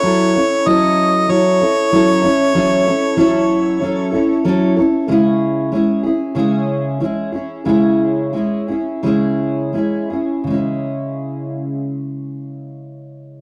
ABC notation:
X:1
M:4/4
L:1/8
Q:1/4=93
K:C#m
V:1 name="Harmonica"
c2 d2 c4- | c6 z2 | z8 | z8 |
z8 |]
V:2 name="Steel-string acoustic guitar"
[F,CEA] [CEA] [F,CEA]2 [F,CEA] [CEA] [F,CEA] [CEA] | [F,CEA] [CEA] [F,CEA]2 [F,CEA] [CEA] [F,CEA] [CEA] | [C,G,CEG]2 [G,CEG] [CEG] [C,G,CEG]2 [G,CEG] [CEG] | [C,G,CEG]2 [G,CEG] [CEG] [C,G,CEG]2 [G,CEG] [CEG] |
[C,G,CEG]8 |]